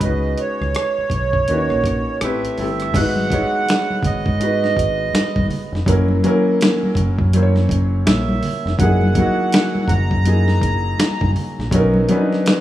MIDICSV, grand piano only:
0, 0, Header, 1, 2, 480
1, 0, Start_track
1, 0, Key_signature, 5, "minor"
1, 0, Tempo, 731707
1, 8, Time_signature, 4, 2, 24, 8
1, 8269, End_track
2, 0, Start_track
2, 0, Title_t, "Grand piano"
2, 0, Program_c, 0, 0
2, 0, Control_c, 0, 64, 127
2, 14, Note_on_c, 0, 56, 61
2, 17, Control_c, 0, 64, 0
2, 18, Note_on_c, 0, 61, 58
2, 25, Note_on_c, 0, 63, 57
2, 27, Note_on_c, 0, 66, 57
2, 33, Note_on_c, 0, 71, 73
2, 124, Control_c, 0, 64, 127
2, 840, Note_off_c, 0, 56, 0
2, 841, Note_off_c, 0, 61, 0
2, 845, Note_off_c, 0, 63, 0
2, 846, Note_off_c, 0, 66, 0
2, 849, Note_off_c, 0, 71, 0
2, 969, Note_on_c, 0, 58, 76
2, 975, Control_c, 0, 64, 0
2, 978, Note_on_c, 0, 61, 76
2, 984, Note_on_c, 0, 63, 67
2, 987, Note_on_c, 0, 66, 74
2, 992, Note_on_c, 0, 71, 67
2, 1032, Note_off_c, 0, 71, 0
2, 1036, Note_on_c, 0, 73, 87
2, 1089, Control_c, 0, 64, 127
2, 1390, Note_off_c, 0, 58, 0
2, 1395, Note_off_c, 0, 61, 0
2, 1398, Note_off_c, 0, 63, 0
2, 1399, Note_off_c, 0, 66, 0
2, 1423, Note_off_c, 0, 73, 0
2, 1453, Note_on_c, 0, 57, 77
2, 1455, Control_c, 0, 64, 0
2, 1456, Note_on_c, 0, 60, 71
2, 1463, Note_on_c, 0, 64, 73
2, 1468, Note_on_c, 0, 67, 69
2, 1472, Note_on_c, 0, 71, 82
2, 1586, Control_c, 0, 64, 127
2, 1661, Note_off_c, 0, 57, 0
2, 1663, Note_off_c, 0, 60, 0
2, 1666, Note_off_c, 0, 64, 0
2, 1669, Note_off_c, 0, 67, 0
2, 1671, Note_off_c, 0, 71, 0
2, 1693, Note_on_c, 0, 57, 70
2, 1698, Note_on_c, 0, 60, 64
2, 1702, Note_on_c, 0, 64, 72
2, 1708, Note_on_c, 0, 67, 64
2, 1714, Note_on_c, 0, 69, 82
2, 1901, Note_off_c, 0, 57, 0
2, 1904, Note_off_c, 0, 60, 0
2, 1906, Note_off_c, 0, 64, 0
2, 1909, Note_off_c, 0, 67, 0
2, 1912, Note_off_c, 0, 69, 0
2, 1931, Note_on_c, 0, 56, 65
2, 1935, Note_on_c, 0, 59, 65
2, 1936, Control_c, 0, 64, 0
2, 1942, Note_on_c, 0, 63, 66
2, 1945, Note_on_c, 0, 66, 63
2, 1952, Note_on_c, 0, 71, 80
2, 2041, Control_c, 0, 64, 127
2, 2140, Note_off_c, 0, 56, 0
2, 2142, Note_off_c, 0, 59, 0
2, 2146, Note_off_c, 0, 63, 0
2, 2147, Note_off_c, 0, 66, 0
2, 2151, Note_off_c, 0, 71, 0
2, 2173, Note_on_c, 0, 56, 73
2, 2174, Note_on_c, 0, 59, 68
2, 2180, Note_on_c, 0, 63, 68
2, 2185, Note_on_c, 0, 66, 64
2, 2191, Note_on_c, 0, 73, 80
2, 2803, Note_off_c, 0, 56, 0
2, 2803, Note_off_c, 0, 59, 0
2, 2807, Note_off_c, 0, 63, 0
2, 2809, Note_off_c, 0, 66, 0
2, 2812, Note_off_c, 0, 73, 0
2, 2885, Note_on_c, 0, 56, 67
2, 2891, Note_on_c, 0, 59, 60
2, 2895, Note_on_c, 0, 63, 58
2, 2901, Note_on_c, 0, 66, 57
2, 2905, Note_on_c, 0, 71, 72
2, 3715, Note_off_c, 0, 56, 0
2, 3718, Note_off_c, 0, 59, 0
2, 3720, Note_off_c, 0, 63, 0
2, 3723, Note_off_c, 0, 66, 0
2, 3725, Note_off_c, 0, 71, 0
2, 3847, Note_on_c, 0, 54, 83
2, 3851, Note_on_c, 0, 58, 74
2, 3855, Control_c, 0, 64, 0
2, 3855, Note_on_c, 0, 61, 77
2, 3859, Note_on_c, 0, 64, 77
2, 3864, Note_on_c, 0, 70, 92
2, 3984, Control_c, 0, 64, 127
2, 4058, Note_off_c, 0, 54, 0
2, 4060, Note_off_c, 0, 58, 0
2, 4062, Note_off_c, 0, 61, 0
2, 4064, Note_off_c, 0, 64, 0
2, 4067, Note_off_c, 0, 70, 0
2, 4091, Note_on_c, 0, 54, 86
2, 4096, Note_on_c, 0, 58, 78
2, 4099, Note_on_c, 0, 61, 83
2, 4107, Note_on_c, 0, 64, 85
2, 4109, Note_on_c, 0, 70, 102
2, 4722, Note_off_c, 0, 54, 0
2, 4724, Note_off_c, 0, 58, 0
2, 4726, Note_off_c, 0, 61, 0
2, 4730, Note_off_c, 0, 64, 0
2, 4731, Note_off_c, 0, 70, 0
2, 4812, Note_on_c, 0, 54, 75
2, 4816, Note_on_c, 0, 58, 74
2, 4821, Note_on_c, 0, 61, 72
2, 4825, Note_on_c, 0, 64, 68
2, 4830, Note_on_c, 0, 72, 67
2, 4871, Note_off_c, 0, 72, 0
2, 4872, Note_on_c, 0, 73, 84
2, 5639, Note_off_c, 0, 54, 0
2, 5641, Note_off_c, 0, 58, 0
2, 5643, Note_off_c, 0, 61, 0
2, 5645, Note_off_c, 0, 64, 0
2, 5668, Note_off_c, 0, 73, 0
2, 5773, Note_on_c, 0, 54, 74
2, 5775, Control_c, 0, 64, 0
2, 5778, Note_on_c, 0, 58, 66
2, 5783, Note_on_c, 0, 63, 63
2, 5786, Note_on_c, 0, 64, 62
2, 5792, Note_on_c, 0, 68, 82
2, 5909, Control_c, 0, 64, 127
2, 5981, Note_off_c, 0, 54, 0
2, 5984, Note_off_c, 0, 58, 0
2, 5986, Note_off_c, 0, 63, 0
2, 5988, Note_off_c, 0, 64, 0
2, 5991, Note_off_c, 0, 68, 0
2, 6015, Note_on_c, 0, 54, 78
2, 6018, Note_on_c, 0, 58, 70
2, 6023, Note_on_c, 0, 63, 67
2, 6028, Note_on_c, 0, 64, 70
2, 6031, Note_on_c, 0, 66, 88
2, 6644, Note_off_c, 0, 54, 0
2, 6645, Note_off_c, 0, 58, 0
2, 6648, Note_off_c, 0, 63, 0
2, 6650, Note_off_c, 0, 64, 0
2, 6652, Note_off_c, 0, 66, 0
2, 6726, Note_on_c, 0, 54, 69
2, 6732, Note_on_c, 0, 58, 57
2, 6737, Note_on_c, 0, 63, 62
2, 6739, Note_on_c, 0, 64, 61
2, 6746, Note_on_c, 0, 68, 78
2, 7556, Note_off_c, 0, 54, 0
2, 7558, Note_off_c, 0, 58, 0
2, 7561, Note_off_c, 0, 63, 0
2, 7562, Note_off_c, 0, 64, 0
2, 7565, Note_off_c, 0, 68, 0
2, 7688, Note_on_c, 0, 54, 83
2, 7696, Note_on_c, 0, 59, 80
2, 7697, Control_c, 0, 64, 0
2, 7701, Note_on_c, 0, 61, 82
2, 7704, Note_on_c, 0, 63, 74
2, 7711, Note_on_c, 0, 70, 96
2, 7819, Control_c, 0, 64, 127
2, 7899, Note_off_c, 0, 54, 0
2, 7903, Note_off_c, 0, 59, 0
2, 7905, Note_off_c, 0, 61, 0
2, 7907, Note_off_c, 0, 63, 0
2, 7910, Note_off_c, 0, 70, 0
2, 7930, Note_on_c, 0, 54, 90
2, 7933, Note_on_c, 0, 59, 83
2, 7940, Note_on_c, 0, 61, 82
2, 7946, Note_on_c, 0, 62, 67
2, 7952, Note_on_c, 0, 71, 91
2, 7986, Note_on_c, 0, 63, 80
2, 7989, Note_off_c, 0, 62, 0
2, 8269, Note_off_c, 0, 54, 0
2, 8269, Note_off_c, 0, 59, 0
2, 8269, Note_off_c, 0, 61, 0
2, 8269, Note_off_c, 0, 63, 0
2, 8269, Note_off_c, 0, 71, 0
2, 8269, End_track
0, 0, End_of_file